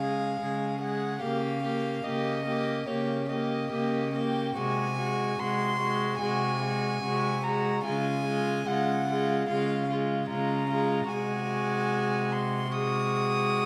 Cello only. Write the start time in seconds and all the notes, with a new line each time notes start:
Already playing: C#3
0.41 C#3
1.23 C#3
2.05 C#3
2.89 C#3
3.73 C#3
4.56 C3
5.40 C3
6.22 C3
7.03 C3
7.85 C#3
8.68 C#3
9.49 C#3
10.30 C#3
11.11 C3